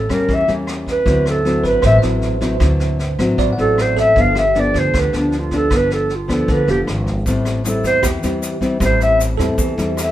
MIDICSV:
0, 0, Header, 1, 6, 480
1, 0, Start_track
1, 0, Key_signature, 0, "minor"
1, 0, Tempo, 387597
1, 1311, Time_signature, 4, 2, 24, 8
1, 12528, End_track
2, 0, Start_track
2, 0, Title_t, "Clarinet"
2, 0, Program_c, 0, 71
2, 0, Note_on_c, 0, 69, 75
2, 139, Note_off_c, 0, 69, 0
2, 152, Note_on_c, 0, 70, 79
2, 426, Note_on_c, 0, 76, 84
2, 444, Note_off_c, 0, 70, 0
2, 628, Note_off_c, 0, 76, 0
2, 1130, Note_on_c, 0, 71, 91
2, 1549, Note_off_c, 0, 71, 0
2, 1601, Note_on_c, 0, 69, 80
2, 2024, Note_off_c, 0, 69, 0
2, 2068, Note_on_c, 0, 71, 79
2, 2274, Note_off_c, 0, 71, 0
2, 2314, Note_on_c, 0, 76, 86
2, 2445, Note_off_c, 0, 76, 0
2, 4464, Note_on_c, 0, 69, 94
2, 4725, Note_on_c, 0, 72, 78
2, 4743, Note_off_c, 0, 69, 0
2, 4937, Note_off_c, 0, 72, 0
2, 4951, Note_on_c, 0, 76, 101
2, 5206, Note_on_c, 0, 77, 98
2, 5225, Note_off_c, 0, 76, 0
2, 5418, Note_off_c, 0, 77, 0
2, 5433, Note_on_c, 0, 76, 79
2, 5693, Note_on_c, 0, 74, 73
2, 5712, Note_off_c, 0, 76, 0
2, 5928, Note_on_c, 0, 72, 80
2, 5947, Note_off_c, 0, 74, 0
2, 6185, Note_on_c, 0, 71, 76
2, 6203, Note_off_c, 0, 72, 0
2, 6387, Note_off_c, 0, 71, 0
2, 6419, Note_on_c, 0, 62, 60
2, 6675, Note_on_c, 0, 65, 66
2, 6693, Note_off_c, 0, 62, 0
2, 6872, Note_off_c, 0, 65, 0
2, 6893, Note_on_c, 0, 69, 90
2, 7146, Note_on_c, 0, 71, 99
2, 7164, Note_off_c, 0, 69, 0
2, 7340, Note_off_c, 0, 71, 0
2, 7348, Note_on_c, 0, 69, 77
2, 7621, Note_on_c, 0, 65, 64
2, 7640, Note_off_c, 0, 69, 0
2, 7825, Note_off_c, 0, 65, 0
2, 7834, Note_on_c, 0, 69, 78
2, 8089, Note_on_c, 0, 71, 89
2, 8107, Note_off_c, 0, 69, 0
2, 8291, Note_off_c, 0, 71, 0
2, 8299, Note_on_c, 0, 67, 82
2, 8434, Note_off_c, 0, 67, 0
2, 9508, Note_on_c, 0, 69, 69
2, 9713, Note_off_c, 0, 69, 0
2, 9747, Note_on_c, 0, 72, 97
2, 9952, Note_off_c, 0, 72, 0
2, 10959, Note_on_c, 0, 72, 85
2, 11158, Note_off_c, 0, 72, 0
2, 11183, Note_on_c, 0, 76, 93
2, 11390, Note_off_c, 0, 76, 0
2, 12415, Note_on_c, 0, 76, 73
2, 12528, Note_off_c, 0, 76, 0
2, 12528, End_track
3, 0, Start_track
3, 0, Title_t, "Tine electric piano"
3, 0, Program_c, 1, 4
3, 0, Control_c, 1, 64, 127
3, 1326, Control_c, 1, 64, 0
3, 1555, Control_c, 1, 64, 127
3, 2026, Note_on_c, 1, 71, 55
3, 2267, Note_on_c, 1, 72, 60
3, 2459, Note_on_c, 1, 76, 36
3, 2979, Note_off_c, 1, 72, 0
3, 2994, Note_on_c, 1, 72, 42
3, 3048, Note_off_c, 1, 71, 0
3, 3444, Note_off_c, 1, 76, 0
3, 4012, Note_off_c, 1, 72, 0
3, 4196, Note_on_c, 1, 74, 55
3, 4366, Note_on_c, 1, 78, 38
3, 4911, Note_on_c, 1, 69, 56
3, 5129, Note_off_c, 1, 78, 0
3, 5167, Control_c, 1, 64, 0
3, 5212, Note_off_c, 1, 74, 0
3, 5357, Note_off_c, 1, 69, 0
3, 5387, Control_c, 1, 64, 127
3, 5398, Note_on_c, 1, 67, 49
3, 6413, Note_off_c, 1, 67, 0
3, 8040, Note_on_c, 1, 69, 43
3, 8481, Note_off_c, 1, 69, 0
3, 8523, Control_c, 1, 64, 0
3, 9246, Control_c, 1, 64, 127
3, 9942, Note_on_c, 1, 67, 53
3, 10964, Note_off_c, 1, 67, 0
3, 11610, Note_on_c, 1, 69, 60
3, 12528, Note_off_c, 1, 69, 0
3, 12528, End_track
4, 0, Start_track
4, 0, Title_t, "Nylon-string guitar"
4, 0, Program_c, 2, 24
4, 0, Note_on_c, 2, 45, 51
4, 111, Note_on_c, 2, 55, 52
4, 117, Note_on_c, 2, 58, 52
4, 123, Note_on_c, 2, 61, 66
4, 325, Note_off_c, 2, 45, 0
4, 354, Note_on_c, 2, 52, 47
4, 553, Note_off_c, 2, 55, 0
4, 556, Note_off_c, 2, 58, 0
4, 557, Note_off_c, 2, 61, 0
4, 591, Note_on_c, 2, 55, 50
4, 599, Note_on_c, 2, 58, 58
4, 600, Note_on_c, 2, 61, 61
4, 1274, Note_off_c, 2, 55, 0
4, 1275, Note_off_c, 2, 58, 0
4, 1277, Note_off_c, 2, 61, 0
4, 1289, Note_off_c, 2, 52, 0
4, 1302, Note_on_c, 2, 54, 48
4, 1307, Note_on_c, 2, 50, 52
4, 1312, Note_on_c, 2, 60, 51
4, 1316, Note_on_c, 2, 64, 59
4, 1748, Note_off_c, 2, 54, 0
4, 1752, Note_off_c, 2, 60, 0
4, 1755, Note_off_c, 2, 64, 0
4, 1794, Note_on_c, 2, 54, 54
4, 1802, Note_on_c, 2, 60, 55
4, 1809, Note_on_c, 2, 64, 58
4, 2245, Note_off_c, 2, 50, 0
4, 2280, Note_on_c, 2, 45, 52
4, 2474, Note_off_c, 2, 54, 0
4, 2478, Note_off_c, 2, 60, 0
4, 2480, Note_off_c, 2, 64, 0
4, 2502, Note_on_c, 2, 54, 52
4, 2505, Note_on_c, 2, 60, 53
4, 2516, Note_on_c, 2, 64, 60
4, 2948, Note_off_c, 2, 54, 0
4, 2950, Note_off_c, 2, 60, 0
4, 2953, Note_off_c, 2, 64, 0
4, 2980, Note_on_c, 2, 54, 60
4, 2986, Note_on_c, 2, 60, 57
4, 2990, Note_on_c, 2, 64, 54
4, 3188, Note_off_c, 2, 54, 0
4, 3189, Note_off_c, 2, 60, 0
4, 3192, Note_off_c, 2, 64, 0
4, 3211, Note_off_c, 2, 45, 0
4, 3221, Note_on_c, 2, 50, 52
4, 3224, Note_on_c, 2, 54, 51
4, 3228, Note_on_c, 2, 60, 55
4, 3230, Note_on_c, 2, 64, 62
4, 3704, Note_off_c, 2, 54, 0
4, 3705, Note_off_c, 2, 60, 0
4, 3707, Note_off_c, 2, 64, 0
4, 3953, Note_on_c, 2, 54, 64
4, 3955, Note_on_c, 2, 60, 64
4, 3964, Note_on_c, 2, 64, 66
4, 4162, Note_off_c, 2, 50, 0
4, 4192, Note_on_c, 2, 45, 55
4, 4393, Note_off_c, 2, 54, 0
4, 4394, Note_off_c, 2, 60, 0
4, 4399, Note_off_c, 2, 64, 0
4, 4422, Note_on_c, 2, 54, 51
4, 4432, Note_on_c, 2, 60, 53
4, 4439, Note_on_c, 2, 64, 64
4, 5108, Note_off_c, 2, 54, 0
4, 5113, Note_off_c, 2, 60, 0
4, 5116, Note_off_c, 2, 64, 0
4, 5127, Note_off_c, 2, 45, 0
4, 5160, Note_on_c, 2, 43, 56
4, 5161, Note_on_c, 2, 53, 59
4, 5164, Note_on_c, 2, 59, 57
4, 5172, Note_on_c, 2, 62, 57
4, 5463, Note_off_c, 2, 53, 0
4, 5466, Note_off_c, 2, 59, 0
4, 5470, Note_off_c, 2, 62, 0
4, 5631, Note_on_c, 2, 53, 61
4, 5640, Note_on_c, 2, 62, 52
4, 5646, Note_on_c, 2, 59, 49
4, 6092, Note_off_c, 2, 43, 0
4, 6116, Note_on_c, 2, 50, 49
4, 6312, Note_off_c, 2, 53, 0
4, 6316, Note_off_c, 2, 62, 0
4, 6319, Note_off_c, 2, 59, 0
4, 6348, Note_on_c, 2, 53, 57
4, 6357, Note_on_c, 2, 59, 54
4, 6357, Note_on_c, 2, 62, 62
4, 6791, Note_off_c, 2, 53, 0
4, 6794, Note_off_c, 2, 59, 0
4, 6795, Note_off_c, 2, 62, 0
4, 6842, Note_on_c, 2, 53, 66
4, 6850, Note_on_c, 2, 59, 51
4, 6856, Note_on_c, 2, 62, 76
4, 7038, Note_off_c, 2, 53, 0
4, 7041, Note_off_c, 2, 59, 0
4, 7045, Note_off_c, 2, 62, 0
4, 7049, Note_off_c, 2, 50, 0
4, 7073, Note_on_c, 2, 43, 51
4, 7083, Note_on_c, 2, 53, 53
4, 7087, Note_on_c, 2, 59, 53
4, 7088, Note_on_c, 2, 62, 59
4, 7554, Note_off_c, 2, 53, 0
4, 7555, Note_off_c, 2, 59, 0
4, 7555, Note_off_c, 2, 62, 0
4, 7777, Note_on_c, 2, 53, 67
4, 7787, Note_on_c, 2, 59, 57
4, 7794, Note_on_c, 2, 62, 59
4, 8007, Note_off_c, 2, 43, 0
4, 8030, Note_on_c, 2, 50, 55
4, 8226, Note_off_c, 2, 53, 0
4, 8228, Note_off_c, 2, 59, 0
4, 8233, Note_off_c, 2, 62, 0
4, 8263, Note_on_c, 2, 53, 58
4, 8273, Note_on_c, 2, 59, 50
4, 8278, Note_on_c, 2, 62, 60
4, 8486, Note_off_c, 2, 50, 0
4, 8948, Note_off_c, 2, 53, 0
4, 8952, Note_off_c, 2, 59, 0
4, 8955, Note_off_c, 2, 62, 0
4, 9004, Note_on_c, 2, 55, 56
4, 9005, Note_on_c, 2, 45, 53
4, 9013, Note_on_c, 2, 60, 54
4, 9019, Note_on_c, 2, 64, 59
4, 9437, Note_off_c, 2, 55, 0
4, 9443, Note_off_c, 2, 60, 0
4, 9444, Note_off_c, 2, 64, 0
4, 9477, Note_on_c, 2, 55, 48
4, 9487, Note_on_c, 2, 60, 53
4, 9488, Note_on_c, 2, 64, 58
4, 9932, Note_off_c, 2, 45, 0
4, 9952, Note_on_c, 2, 52, 54
4, 10154, Note_off_c, 2, 55, 0
4, 10159, Note_off_c, 2, 60, 0
4, 10159, Note_off_c, 2, 64, 0
4, 10189, Note_on_c, 2, 55, 53
4, 10192, Note_on_c, 2, 60, 47
4, 10202, Note_on_c, 2, 64, 70
4, 10631, Note_off_c, 2, 55, 0
4, 10631, Note_off_c, 2, 60, 0
4, 10637, Note_off_c, 2, 64, 0
4, 10667, Note_on_c, 2, 55, 64
4, 10668, Note_on_c, 2, 60, 64
4, 10674, Note_on_c, 2, 64, 71
4, 10869, Note_off_c, 2, 60, 0
4, 10870, Note_off_c, 2, 55, 0
4, 10871, Note_off_c, 2, 64, 0
4, 10886, Note_off_c, 2, 52, 0
4, 10903, Note_on_c, 2, 45, 55
4, 10908, Note_on_c, 2, 55, 53
4, 10916, Note_on_c, 2, 60, 57
4, 10921, Note_on_c, 2, 64, 63
4, 11589, Note_off_c, 2, 55, 0
4, 11589, Note_off_c, 2, 60, 0
4, 11590, Note_off_c, 2, 64, 0
4, 11624, Note_on_c, 2, 55, 59
4, 11629, Note_on_c, 2, 60, 60
4, 11635, Note_on_c, 2, 64, 72
4, 11844, Note_off_c, 2, 45, 0
4, 11873, Note_on_c, 2, 52, 53
4, 12067, Note_off_c, 2, 55, 0
4, 12070, Note_off_c, 2, 60, 0
4, 12073, Note_off_c, 2, 64, 0
4, 12108, Note_on_c, 2, 55, 53
4, 12113, Note_on_c, 2, 60, 60
4, 12117, Note_on_c, 2, 64, 57
4, 12528, Note_off_c, 2, 52, 0
4, 12528, Note_off_c, 2, 55, 0
4, 12528, Note_off_c, 2, 60, 0
4, 12528, Note_off_c, 2, 64, 0
4, 12528, End_track
5, 0, Start_track
5, 0, Title_t, "Upright bass"
5, 0, Program_c, 3, 32
5, 117, Note_on_c, 3, 40, 78
5, 337, Note_off_c, 3, 40, 0
5, 358, Note_on_c, 3, 40, 83
5, 578, Note_off_c, 3, 40, 0
5, 608, Note_on_c, 3, 40, 67
5, 1270, Note_off_c, 3, 40, 0
5, 1311, Note_on_c, 3, 38, 87
5, 1982, Note_off_c, 3, 38, 0
5, 2028, Note_on_c, 3, 33, 73
5, 2253, Note_off_c, 3, 33, 0
5, 2269, Note_on_c, 3, 33, 92
5, 2493, Note_off_c, 3, 33, 0
5, 2514, Note_on_c, 3, 33, 74
5, 3183, Note_off_c, 3, 33, 0
5, 3225, Note_on_c, 3, 38, 93
5, 3898, Note_off_c, 3, 38, 0
5, 3950, Note_on_c, 3, 33, 83
5, 4174, Note_off_c, 3, 33, 0
5, 4194, Note_on_c, 3, 33, 85
5, 4416, Note_off_c, 3, 33, 0
5, 4442, Note_on_c, 3, 33, 83
5, 5107, Note_off_c, 3, 33, 0
5, 5156, Note_on_c, 3, 31, 85
5, 5824, Note_off_c, 3, 31, 0
5, 5872, Note_on_c, 3, 38, 87
5, 6094, Note_off_c, 3, 38, 0
5, 6118, Note_on_c, 3, 38, 89
5, 6337, Note_off_c, 3, 38, 0
5, 6367, Note_on_c, 3, 38, 76
5, 7029, Note_off_c, 3, 38, 0
5, 7074, Note_on_c, 3, 31, 82
5, 7742, Note_off_c, 3, 31, 0
5, 7797, Note_on_c, 3, 38, 77
5, 8017, Note_off_c, 3, 38, 0
5, 8029, Note_on_c, 3, 38, 90
5, 8253, Note_off_c, 3, 38, 0
5, 8275, Note_on_c, 3, 29, 76
5, 8495, Note_off_c, 3, 29, 0
5, 8513, Note_on_c, 3, 32, 85
5, 8958, Note_off_c, 3, 32, 0
5, 8990, Note_on_c, 3, 33, 83
5, 9660, Note_off_c, 3, 33, 0
5, 9712, Note_on_c, 3, 40, 80
5, 9933, Note_off_c, 3, 40, 0
5, 9943, Note_on_c, 3, 40, 95
5, 10169, Note_off_c, 3, 40, 0
5, 10200, Note_on_c, 3, 40, 70
5, 10864, Note_off_c, 3, 40, 0
5, 10904, Note_on_c, 3, 33, 99
5, 11576, Note_off_c, 3, 33, 0
5, 11624, Note_on_c, 3, 40, 76
5, 11849, Note_off_c, 3, 40, 0
5, 11863, Note_on_c, 3, 40, 98
5, 12088, Note_off_c, 3, 40, 0
5, 12106, Note_on_c, 3, 40, 86
5, 12528, Note_off_c, 3, 40, 0
5, 12528, End_track
6, 0, Start_track
6, 0, Title_t, "Drums"
6, 114, Note_on_c, 9, 36, 22
6, 119, Note_on_c, 9, 37, 54
6, 119, Note_on_c, 9, 38, 22
6, 238, Note_off_c, 9, 36, 0
6, 243, Note_off_c, 9, 37, 0
6, 243, Note_off_c, 9, 38, 0
6, 355, Note_on_c, 9, 36, 53
6, 359, Note_on_c, 9, 38, 22
6, 479, Note_off_c, 9, 36, 0
6, 483, Note_off_c, 9, 38, 0
6, 593, Note_on_c, 9, 38, 23
6, 717, Note_off_c, 9, 38, 0
6, 832, Note_on_c, 9, 37, 56
6, 832, Note_on_c, 9, 38, 24
6, 956, Note_off_c, 9, 37, 0
6, 956, Note_off_c, 9, 38, 0
6, 1072, Note_on_c, 9, 36, 22
6, 1080, Note_on_c, 9, 38, 23
6, 1196, Note_off_c, 9, 36, 0
6, 1204, Note_off_c, 9, 38, 0
6, 1311, Note_on_c, 9, 36, 55
6, 1312, Note_on_c, 9, 38, 23
6, 1435, Note_off_c, 9, 36, 0
6, 1436, Note_off_c, 9, 38, 0
6, 1556, Note_on_c, 9, 37, 55
6, 1556, Note_on_c, 9, 38, 23
6, 1680, Note_off_c, 9, 37, 0
6, 1680, Note_off_c, 9, 38, 0
6, 1794, Note_on_c, 9, 38, 23
6, 1918, Note_off_c, 9, 38, 0
6, 2026, Note_on_c, 9, 36, 24
6, 2028, Note_on_c, 9, 38, 21
6, 2150, Note_off_c, 9, 36, 0
6, 2152, Note_off_c, 9, 38, 0
6, 2253, Note_on_c, 9, 37, 62
6, 2253, Note_on_c, 9, 38, 20
6, 2262, Note_on_c, 9, 36, 53
6, 2377, Note_off_c, 9, 37, 0
6, 2377, Note_off_c, 9, 38, 0
6, 2386, Note_off_c, 9, 36, 0
6, 2500, Note_on_c, 9, 38, 24
6, 2624, Note_off_c, 9, 38, 0
6, 2743, Note_on_c, 9, 38, 23
6, 2867, Note_off_c, 9, 38, 0
6, 2981, Note_on_c, 9, 38, 24
6, 2982, Note_on_c, 9, 36, 25
6, 3105, Note_off_c, 9, 38, 0
6, 3106, Note_off_c, 9, 36, 0
6, 3219, Note_on_c, 9, 37, 59
6, 3219, Note_on_c, 9, 38, 25
6, 3223, Note_on_c, 9, 36, 62
6, 3343, Note_off_c, 9, 37, 0
6, 3343, Note_off_c, 9, 38, 0
6, 3347, Note_off_c, 9, 36, 0
6, 3463, Note_on_c, 9, 38, 24
6, 3587, Note_off_c, 9, 38, 0
6, 3705, Note_on_c, 9, 38, 25
6, 3828, Note_off_c, 9, 38, 0
6, 3947, Note_on_c, 9, 36, 24
6, 3947, Note_on_c, 9, 37, 58
6, 3947, Note_on_c, 9, 38, 20
6, 4071, Note_off_c, 9, 36, 0
6, 4071, Note_off_c, 9, 37, 0
6, 4071, Note_off_c, 9, 38, 0
6, 4186, Note_on_c, 9, 38, 22
6, 4188, Note_on_c, 9, 36, 56
6, 4310, Note_off_c, 9, 38, 0
6, 4312, Note_off_c, 9, 36, 0
6, 4435, Note_on_c, 9, 38, 22
6, 4559, Note_off_c, 9, 38, 0
6, 4680, Note_on_c, 9, 37, 56
6, 4680, Note_on_c, 9, 38, 23
6, 4804, Note_off_c, 9, 37, 0
6, 4804, Note_off_c, 9, 38, 0
6, 4910, Note_on_c, 9, 36, 22
6, 4915, Note_on_c, 9, 38, 25
6, 5034, Note_off_c, 9, 36, 0
6, 5039, Note_off_c, 9, 38, 0
6, 5152, Note_on_c, 9, 36, 58
6, 5157, Note_on_c, 9, 38, 21
6, 5276, Note_off_c, 9, 36, 0
6, 5281, Note_off_c, 9, 38, 0
6, 5389, Note_on_c, 9, 37, 54
6, 5389, Note_on_c, 9, 38, 23
6, 5513, Note_off_c, 9, 37, 0
6, 5513, Note_off_c, 9, 38, 0
6, 5631, Note_on_c, 9, 38, 22
6, 5754, Note_off_c, 9, 38, 0
6, 5871, Note_on_c, 9, 36, 22
6, 5876, Note_on_c, 9, 38, 22
6, 5995, Note_off_c, 9, 36, 0
6, 5999, Note_off_c, 9, 38, 0
6, 6113, Note_on_c, 9, 36, 49
6, 6116, Note_on_c, 9, 37, 55
6, 6116, Note_on_c, 9, 38, 25
6, 6237, Note_off_c, 9, 36, 0
6, 6240, Note_off_c, 9, 37, 0
6, 6240, Note_off_c, 9, 38, 0
6, 6352, Note_on_c, 9, 38, 27
6, 6476, Note_off_c, 9, 38, 0
6, 6587, Note_on_c, 9, 38, 22
6, 6711, Note_off_c, 9, 38, 0
6, 6822, Note_on_c, 9, 38, 26
6, 6828, Note_on_c, 9, 36, 25
6, 6946, Note_off_c, 9, 38, 0
6, 6952, Note_off_c, 9, 36, 0
6, 7064, Note_on_c, 9, 37, 63
6, 7064, Note_on_c, 9, 38, 27
6, 7069, Note_on_c, 9, 36, 64
6, 7188, Note_off_c, 9, 37, 0
6, 7188, Note_off_c, 9, 38, 0
6, 7193, Note_off_c, 9, 36, 0
6, 7312, Note_on_c, 9, 38, 23
6, 7435, Note_off_c, 9, 38, 0
6, 7545, Note_on_c, 9, 38, 22
6, 7669, Note_off_c, 9, 38, 0
6, 7791, Note_on_c, 9, 36, 22
6, 7791, Note_on_c, 9, 37, 50
6, 7791, Note_on_c, 9, 38, 23
6, 7915, Note_off_c, 9, 36, 0
6, 7915, Note_off_c, 9, 37, 0
6, 7915, Note_off_c, 9, 38, 0
6, 8026, Note_on_c, 9, 38, 23
6, 8028, Note_on_c, 9, 36, 59
6, 8150, Note_off_c, 9, 38, 0
6, 8152, Note_off_c, 9, 36, 0
6, 8266, Note_on_c, 9, 38, 25
6, 8390, Note_off_c, 9, 38, 0
6, 8511, Note_on_c, 9, 37, 57
6, 8511, Note_on_c, 9, 38, 26
6, 8635, Note_off_c, 9, 37, 0
6, 8635, Note_off_c, 9, 38, 0
6, 8751, Note_on_c, 9, 36, 25
6, 8751, Note_on_c, 9, 38, 23
6, 8875, Note_off_c, 9, 36, 0
6, 8875, Note_off_c, 9, 38, 0
6, 8990, Note_on_c, 9, 36, 57
6, 8992, Note_on_c, 9, 38, 23
6, 8997, Note_on_c, 9, 82, 54
6, 9114, Note_off_c, 9, 36, 0
6, 9116, Note_off_c, 9, 38, 0
6, 9121, Note_off_c, 9, 82, 0
6, 9228, Note_on_c, 9, 37, 59
6, 9228, Note_on_c, 9, 38, 23
6, 9239, Note_on_c, 9, 82, 23
6, 9352, Note_off_c, 9, 37, 0
6, 9352, Note_off_c, 9, 38, 0
6, 9363, Note_off_c, 9, 82, 0
6, 9461, Note_on_c, 9, 38, 26
6, 9485, Note_on_c, 9, 82, 63
6, 9585, Note_off_c, 9, 38, 0
6, 9609, Note_off_c, 9, 82, 0
6, 9705, Note_on_c, 9, 36, 20
6, 9708, Note_on_c, 9, 38, 20
6, 9715, Note_on_c, 9, 82, 26
6, 9829, Note_off_c, 9, 36, 0
6, 9832, Note_off_c, 9, 38, 0
6, 9838, Note_off_c, 9, 82, 0
6, 9939, Note_on_c, 9, 37, 63
6, 9939, Note_on_c, 9, 38, 24
6, 9944, Note_on_c, 9, 36, 56
6, 9956, Note_on_c, 9, 82, 70
6, 10063, Note_off_c, 9, 37, 0
6, 10063, Note_off_c, 9, 38, 0
6, 10068, Note_off_c, 9, 36, 0
6, 10080, Note_off_c, 9, 82, 0
6, 10187, Note_on_c, 9, 38, 24
6, 10194, Note_on_c, 9, 82, 30
6, 10311, Note_off_c, 9, 38, 0
6, 10318, Note_off_c, 9, 82, 0
6, 10425, Note_on_c, 9, 38, 23
6, 10439, Note_on_c, 9, 82, 69
6, 10549, Note_off_c, 9, 38, 0
6, 10563, Note_off_c, 9, 82, 0
6, 10662, Note_on_c, 9, 36, 27
6, 10665, Note_on_c, 9, 38, 25
6, 10680, Note_on_c, 9, 82, 26
6, 10785, Note_off_c, 9, 36, 0
6, 10789, Note_off_c, 9, 38, 0
6, 10804, Note_off_c, 9, 82, 0
6, 10902, Note_on_c, 9, 36, 62
6, 10907, Note_on_c, 9, 37, 60
6, 10907, Note_on_c, 9, 38, 24
6, 10913, Note_on_c, 9, 82, 54
6, 11026, Note_off_c, 9, 36, 0
6, 11030, Note_off_c, 9, 37, 0
6, 11030, Note_off_c, 9, 38, 0
6, 11037, Note_off_c, 9, 82, 0
6, 11147, Note_on_c, 9, 38, 24
6, 11163, Note_on_c, 9, 82, 25
6, 11271, Note_off_c, 9, 38, 0
6, 11287, Note_off_c, 9, 82, 0
6, 11384, Note_on_c, 9, 38, 24
6, 11404, Note_on_c, 9, 82, 67
6, 11508, Note_off_c, 9, 38, 0
6, 11528, Note_off_c, 9, 82, 0
6, 11624, Note_on_c, 9, 36, 22
6, 11630, Note_on_c, 9, 37, 51
6, 11630, Note_on_c, 9, 38, 25
6, 11648, Note_on_c, 9, 82, 24
6, 11748, Note_off_c, 9, 36, 0
6, 11753, Note_off_c, 9, 37, 0
6, 11753, Note_off_c, 9, 38, 0
6, 11772, Note_off_c, 9, 82, 0
6, 11860, Note_on_c, 9, 38, 22
6, 11863, Note_on_c, 9, 36, 55
6, 11872, Note_on_c, 9, 82, 64
6, 11984, Note_off_c, 9, 38, 0
6, 11987, Note_off_c, 9, 36, 0
6, 11996, Note_off_c, 9, 82, 0
6, 12105, Note_on_c, 9, 38, 24
6, 12127, Note_on_c, 9, 82, 30
6, 12229, Note_off_c, 9, 38, 0
6, 12250, Note_off_c, 9, 82, 0
6, 12347, Note_on_c, 9, 37, 54
6, 12347, Note_on_c, 9, 38, 23
6, 12361, Note_on_c, 9, 82, 69
6, 12471, Note_off_c, 9, 37, 0
6, 12471, Note_off_c, 9, 38, 0
6, 12484, Note_off_c, 9, 82, 0
6, 12528, End_track
0, 0, End_of_file